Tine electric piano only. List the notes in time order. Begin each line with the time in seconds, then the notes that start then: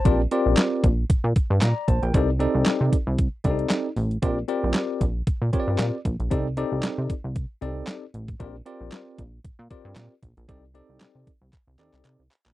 Already playing: C5 A5
0.05 C4 F4 G4 A#4 D5
0.31 C4 F4 G4 A#4 D5
1.62 D5 A#5
1.88 C5 A5
2.03 A#4 G5
2.14 C4 D#4 G4 A4 D5
2.40 C4 D#4 G4 A4 D5
3.44 C4 D4 G4 A4 D5
3.50 D#4
4.22 C4 F4 G4 A#4 D5
4.48 C4 F4 G4 A#4 D5
5.53 C4 F4 G4 A#4 C#5
5.60 D5
6.31 C4 D#4 G4 A4 D5
6.57 C4 D#4 G4 A4 D5
7.61 C4 D#4 G4 A4 D5
8.40 C4 F4 G4 A#4 D5
8.66 C4 F4 G4 A#4 D5
9.70 C4 F4 G4 A#4 D5
10.48 C4 D#4 G4 A4 D5
10.74 C4 D#4 G4 A4 D5
11.79 C4 D#4 G4 A4 D5